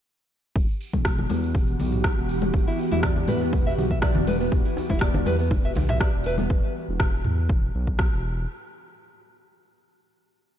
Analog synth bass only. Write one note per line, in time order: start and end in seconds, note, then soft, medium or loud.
0.56 0.67 E1 loud
0.94 1.27 E1 loud
1.30 1.56 E2 medium
1.55 1.76 E1 medium
1.80 2.14 B1 loud
2.18 2.51 E1 medium
2.54 2.65 E1 loud
2.92 3.25 E1 loud
3.28 3.54 E2 medium
3.53 3.74 E1 medium
3.78 4.12 B1 medium
4.16 4.49 E1 medium
4.52 4.63 E1 loud
4.90 5.23 E1 medium
5.27 5.53 E2 medium
5.51 5.72 E1 medium
5.76 6.11 B1 loud
6.14 6.48 E1 medium
6.50 6.61 E1 loud
6.89 7.22 E1 loud
7.25 7.51 E2 medium
7.50 7.71 E1 medium
7.75 8.09 B1 loud
8.13 8.46 E1 medium